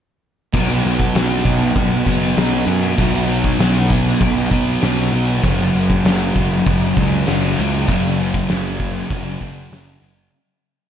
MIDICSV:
0, 0, Header, 1, 4, 480
1, 0, Start_track
1, 0, Tempo, 610998
1, 427, Time_signature, 4, 2, 24, 8
1, 8555, End_track
2, 0, Start_track
2, 0, Title_t, "Distorted electric guitar"
2, 0, Program_c, 0, 30
2, 420, Note_on_c, 0, 47, 91
2, 431, Note_on_c, 0, 54, 104
2, 441, Note_on_c, 0, 59, 96
2, 653, Note_off_c, 0, 59, 0
2, 656, Note_on_c, 0, 59, 57
2, 676, Note_off_c, 0, 54, 0
2, 679, Note_on_c, 0, 54, 54
2, 890, Note_off_c, 0, 47, 0
2, 893, Note_on_c, 0, 47, 65
2, 901, Note_off_c, 0, 54, 0
2, 905, Note_on_c, 0, 54, 65
2, 912, Note_off_c, 0, 59, 0
2, 915, Note_on_c, 0, 59, 73
2, 1598, Note_off_c, 0, 59, 0
2, 1608, Note_on_c, 0, 59, 70
2, 1629, Note_off_c, 0, 54, 0
2, 1632, Note_on_c, 0, 54, 56
2, 1846, Note_off_c, 0, 47, 0
2, 1856, Note_on_c, 0, 47, 69
2, 1864, Note_off_c, 0, 54, 0
2, 1867, Note_on_c, 0, 54, 70
2, 1868, Note_off_c, 0, 59, 0
2, 1878, Note_on_c, 0, 59, 72
2, 2078, Note_off_c, 0, 59, 0
2, 2087, Note_on_c, 0, 59, 60
2, 2108, Note_off_c, 0, 54, 0
2, 2111, Note_on_c, 0, 54, 53
2, 2316, Note_off_c, 0, 47, 0
2, 2325, Note_on_c, 0, 47, 86
2, 2335, Note_off_c, 0, 54, 0
2, 2339, Note_on_c, 0, 54, 112
2, 2340, Note_off_c, 0, 59, 0
2, 2350, Note_on_c, 0, 59, 95
2, 2560, Note_off_c, 0, 59, 0
2, 2569, Note_on_c, 0, 59, 67
2, 2587, Note_off_c, 0, 54, 0
2, 2590, Note_on_c, 0, 54, 60
2, 2805, Note_off_c, 0, 47, 0
2, 2815, Note_on_c, 0, 47, 60
2, 2825, Note_off_c, 0, 54, 0
2, 2825, Note_off_c, 0, 59, 0
2, 2828, Note_on_c, 0, 54, 69
2, 2835, Note_on_c, 0, 59, 76
2, 3528, Note_off_c, 0, 59, 0
2, 3537, Note_on_c, 0, 59, 73
2, 3554, Note_off_c, 0, 54, 0
2, 3558, Note_on_c, 0, 54, 61
2, 3772, Note_off_c, 0, 47, 0
2, 3781, Note_on_c, 0, 47, 75
2, 3793, Note_off_c, 0, 54, 0
2, 3794, Note_off_c, 0, 59, 0
2, 3796, Note_on_c, 0, 54, 66
2, 3803, Note_on_c, 0, 59, 71
2, 4014, Note_off_c, 0, 59, 0
2, 4024, Note_on_c, 0, 59, 62
2, 4041, Note_off_c, 0, 54, 0
2, 4044, Note_on_c, 0, 54, 50
2, 4249, Note_off_c, 0, 47, 0
2, 4251, Note_off_c, 0, 59, 0
2, 4263, Note_on_c, 0, 42, 98
2, 4275, Note_on_c, 0, 49, 106
2, 4282, Note_off_c, 0, 54, 0
2, 4285, Note_on_c, 0, 54, 113
2, 4499, Note_off_c, 0, 54, 0
2, 4502, Note_on_c, 0, 54, 66
2, 4518, Note_off_c, 0, 49, 0
2, 4528, Note_on_c, 0, 49, 57
2, 4742, Note_off_c, 0, 42, 0
2, 4745, Note_on_c, 0, 42, 68
2, 4748, Note_off_c, 0, 49, 0
2, 4757, Note_on_c, 0, 49, 64
2, 4763, Note_off_c, 0, 54, 0
2, 4766, Note_on_c, 0, 54, 81
2, 5458, Note_off_c, 0, 54, 0
2, 5461, Note_on_c, 0, 54, 73
2, 5477, Note_off_c, 0, 49, 0
2, 5487, Note_on_c, 0, 49, 70
2, 5701, Note_off_c, 0, 42, 0
2, 5704, Note_on_c, 0, 42, 73
2, 5705, Note_off_c, 0, 49, 0
2, 5714, Note_on_c, 0, 49, 76
2, 5722, Note_off_c, 0, 54, 0
2, 5725, Note_on_c, 0, 54, 75
2, 5938, Note_off_c, 0, 54, 0
2, 5941, Note_on_c, 0, 54, 57
2, 5956, Note_off_c, 0, 49, 0
2, 5965, Note_on_c, 0, 49, 53
2, 6184, Note_off_c, 0, 42, 0
2, 6187, Note_on_c, 0, 42, 104
2, 6188, Note_off_c, 0, 49, 0
2, 6197, Note_on_c, 0, 49, 106
2, 6200, Note_off_c, 0, 54, 0
2, 6210, Note_on_c, 0, 54, 97
2, 6423, Note_off_c, 0, 54, 0
2, 6432, Note_on_c, 0, 54, 59
2, 6447, Note_off_c, 0, 49, 0
2, 6457, Note_on_c, 0, 49, 64
2, 6660, Note_off_c, 0, 42, 0
2, 6670, Note_on_c, 0, 42, 61
2, 6673, Note_off_c, 0, 49, 0
2, 6682, Note_on_c, 0, 49, 70
2, 6686, Note_off_c, 0, 54, 0
2, 6696, Note_on_c, 0, 54, 62
2, 7378, Note_off_c, 0, 54, 0
2, 7388, Note_on_c, 0, 54, 72
2, 7398, Note_off_c, 0, 49, 0
2, 7408, Note_on_c, 0, 49, 67
2, 7613, Note_off_c, 0, 42, 0
2, 7622, Note_on_c, 0, 42, 72
2, 7627, Note_off_c, 0, 49, 0
2, 7637, Note_off_c, 0, 54, 0
2, 7637, Note_on_c, 0, 49, 76
2, 7646, Note_on_c, 0, 54, 71
2, 7849, Note_off_c, 0, 54, 0
2, 7858, Note_on_c, 0, 54, 63
2, 7872, Note_off_c, 0, 49, 0
2, 7882, Note_on_c, 0, 49, 48
2, 8088, Note_off_c, 0, 54, 0
2, 8090, Note_off_c, 0, 42, 0
2, 8100, Note_off_c, 0, 49, 0
2, 8555, End_track
3, 0, Start_track
3, 0, Title_t, "Picked electric bass"
3, 0, Program_c, 1, 34
3, 428, Note_on_c, 1, 35, 103
3, 629, Note_off_c, 1, 35, 0
3, 668, Note_on_c, 1, 35, 78
3, 869, Note_off_c, 1, 35, 0
3, 907, Note_on_c, 1, 35, 94
3, 1108, Note_off_c, 1, 35, 0
3, 1145, Note_on_c, 1, 35, 97
3, 1347, Note_off_c, 1, 35, 0
3, 1382, Note_on_c, 1, 35, 96
3, 1585, Note_off_c, 1, 35, 0
3, 1623, Note_on_c, 1, 30, 84
3, 1825, Note_off_c, 1, 30, 0
3, 1865, Note_on_c, 1, 35, 98
3, 2067, Note_off_c, 1, 35, 0
3, 2096, Note_on_c, 1, 42, 93
3, 2301, Note_off_c, 1, 42, 0
3, 2349, Note_on_c, 1, 35, 109
3, 2751, Note_off_c, 1, 35, 0
3, 2824, Note_on_c, 1, 35, 92
3, 3228, Note_off_c, 1, 35, 0
3, 3309, Note_on_c, 1, 35, 94
3, 3510, Note_off_c, 1, 35, 0
3, 3545, Note_on_c, 1, 35, 89
3, 3747, Note_off_c, 1, 35, 0
3, 3797, Note_on_c, 1, 35, 92
3, 3994, Note_off_c, 1, 35, 0
3, 4033, Note_on_c, 1, 35, 84
3, 4232, Note_off_c, 1, 35, 0
3, 4275, Note_on_c, 1, 30, 103
3, 4473, Note_off_c, 1, 30, 0
3, 4518, Note_on_c, 1, 30, 88
3, 4715, Note_off_c, 1, 30, 0
3, 4751, Note_on_c, 1, 30, 98
3, 4952, Note_off_c, 1, 30, 0
3, 4998, Note_on_c, 1, 30, 91
3, 5196, Note_off_c, 1, 30, 0
3, 5242, Note_on_c, 1, 30, 93
3, 5438, Note_off_c, 1, 30, 0
3, 5475, Note_on_c, 1, 37, 81
3, 5674, Note_off_c, 1, 37, 0
3, 5724, Note_on_c, 1, 30, 90
3, 5919, Note_off_c, 1, 30, 0
3, 5966, Note_on_c, 1, 37, 93
3, 6161, Note_off_c, 1, 37, 0
3, 6193, Note_on_c, 1, 30, 99
3, 6595, Note_off_c, 1, 30, 0
3, 6685, Note_on_c, 1, 30, 93
3, 7081, Note_off_c, 1, 30, 0
3, 7153, Note_on_c, 1, 30, 96
3, 7353, Note_off_c, 1, 30, 0
3, 7394, Note_on_c, 1, 30, 83
3, 7593, Note_off_c, 1, 30, 0
3, 7624, Note_on_c, 1, 30, 91
3, 7827, Note_off_c, 1, 30, 0
3, 7872, Note_on_c, 1, 30, 96
3, 8072, Note_off_c, 1, 30, 0
3, 8555, End_track
4, 0, Start_track
4, 0, Title_t, "Drums"
4, 422, Note_on_c, 9, 36, 99
4, 424, Note_on_c, 9, 46, 68
4, 501, Note_off_c, 9, 36, 0
4, 503, Note_off_c, 9, 46, 0
4, 665, Note_on_c, 9, 46, 58
4, 744, Note_off_c, 9, 46, 0
4, 782, Note_on_c, 9, 36, 73
4, 861, Note_off_c, 9, 36, 0
4, 905, Note_on_c, 9, 46, 80
4, 913, Note_on_c, 9, 38, 121
4, 983, Note_off_c, 9, 46, 0
4, 992, Note_off_c, 9, 38, 0
4, 1141, Note_on_c, 9, 36, 80
4, 1144, Note_on_c, 9, 46, 54
4, 1219, Note_off_c, 9, 36, 0
4, 1222, Note_off_c, 9, 46, 0
4, 1381, Note_on_c, 9, 36, 112
4, 1385, Note_on_c, 9, 46, 84
4, 1460, Note_off_c, 9, 36, 0
4, 1463, Note_off_c, 9, 46, 0
4, 1622, Note_on_c, 9, 36, 74
4, 1625, Note_on_c, 9, 46, 57
4, 1700, Note_off_c, 9, 36, 0
4, 1703, Note_off_c, 9, 46, 0
4, 1861, Note_on_c, 9, 46, 72
4, 1870, Note_on_c, 9, 38, 103
4, 1940, Note_off_c, 9, 46, 0
4, 1949, Note_off_c, 9, 38, 0
4, 2106, Note_on_c, 9, 46, 60
4, 2184, Note_off_c, 9, 46, 0
4, 2344, Note_on_c, 9, 36, 104
4, 2345, Note_on_c, 9, 46, 69
4, 2422, Note_off_c, 9, 36, 0
4, 2424, Note_off_c, 9, 46, 0
4, 2587, Note_on_c, 9, 46, 52
4, 2666, Note_off_c, 9, 46, 0
4, 2704, Note_on_c, 9, 36, 81
4, 2783, Note_off_c, 9, 36, 0
4, 2823, Note_on_c, 9, 46, 79
4, 2831, Note_on_c, 9, 38, 121
4, 2901, Note_off_c, 9, 46, 0
4, 2910, Note_off_c, 9, 38, 0
4, 3066, Note_on_c, 9, 36, 80
4, 3073, Note_on_c, 9, 46, 51
4, 3144, Note_off_c, 9, 36, 0
4, 3151, Note_off_c, 9, 46, 0
4, 3198, Note_on_c, 9, 38, 34
4, 3277, Note_off_c, 9, 38, 0
4, 3306, Note_on_c, 9, 36, 106
4, 3310, Note_on_c, 9, 46, 62
4, 3385, Note_off_c, 9, 36, 0
4, 3388, Note_off_c, 9, 46, 0
4, 3545, Note_on_c, 9, 36, 74
4, 3547, Note_on_c, 9, 46, 53
4, 3624, Note_off_c, 9, 36, 0
4, 3625, Note_off_c, 9, 46, 0
4, 3784, Note_on_c, 9, 46, 61
4, 3792, Note_on_c, 9, 38, 91
4, 3862, Note_off_c, 9, 46, 0
4, 3871, Note_off_c, 9, 38, 0
4, 4028, Note_on_c, 9, 46, 52
4, 4106, Note_off_c, 9, 46, 0
4, 4270, Note_on_c, 9, 36, 93
4, 4270, Note_on_c, 9, 46, 74
4, 4348, Note_off_c, 9, 46, 0
4, 4349, Note_off_c, 9, 36, 0
4, 4514, Note_on_c, 9, 46, 50
4, 4593, Note_off_c, 9, 46, 0
4, 4633, Note_on_c, 9, 36, 83
4, 4712, Note_off_c, 9, 36, 0
4, 4752, Note_on_c, 9, 46, 75
4, 4761, Note_on_c, 9, 38, 114
4, 4831, Note_off_c, 9, 46, 0
4, 4840, Note_off_c, 9, 38, 0
4, 4995, Note_on_c, 9, 36, 81
4, 5001, Note_on_c, 9, 46, 56
4, 5074, Note_off_c, 9, 36, 0
4, 5079, Note_off_c, 9, 46, 0
4, 5236, Note_on_c, 9, 36, 101
4, 5236, Note_on_c, 9, 46, 77
4, 5315, Note_off_c, 9, 36, 0
4, 5315, Note_off_c, 9, 46, 0
4, 5475, Note_on_c, 9, 36, 80
4, 5477, Note_on_c, 9, 46, 55
4, 5554, Note_off_c, 9, 36, 0
4, 5556, Note_off_c, 9, 46, 0
4, 5710, Note_on_c, 9, 46, 73
4, 5719, Note_on_c, 9, 38, 91
4, 5789, Note_off_c, 9, 46, 0
4, 5797, Note_off_c, 9, 38, 0
4, 5956, Note_on_c, 9, 46, 65
4, 6035, Note_off_c, 9, 46, 0
4, 6195, Note_on_c, 9, 36, 93
4, 6197, Note_on_c, 9, 46, 72
4, 6274, Note_off_c, 9, 36, 0
4, 6276, Note_off_c, 9, 46, 0
4, 6437, Note_on_c, 9, 46, 54
4, 6515, Note_off_c, 9, 46, 0
4, 6554, Note_on_c, 9, 36, 80
4, 6633, Note_off_c, 9, 36, 0
4, 6667, Note_on_c, 9, 46, 77
4, 6676, Note_on_c, 9, 38, 116
4, 6746, Note_off_c, 9, 46, 0
4, 6755, Note_off_c, 9, 38, 0
4, 6910, Note_on_c, 9, 46, 56
4, 6913, Note_on_c, 9, 36, 72
4, 6988, Note_off_c, 9, 46, 0
4, 6991, Note_off_c, 9, 36, 0
4, 7153, Note_on_c, 9, 36, 115
4, 7154, Note_on_c, 9, 46, 67
4, 7232, Note_off_c, 9, 36, 0
4, 7233, Note_off_c, 9, 46, 0
4, 7392, Note_on_c, 9, 36, 71
4, 7397, Note_on_c, 9, 46, 55
4, 7471, Note_off_c, 9, 36, 0
4, 7476, Note_off_c, 9, 46, 0
4, 7635, Note_on_c, 9, 46, 64
4, 7643, Note_on_c, 9, 38, 96
4, 7713, Note_off_c, 9, 46, 0
4, 7722, Note_off_c, 9, 38, 0
4, 7872, Note_on_c, 9, 46, 54
4, 7951, Note_off_c, 9, 46, 0
4, 8555, End_track
0, 0, End_of_file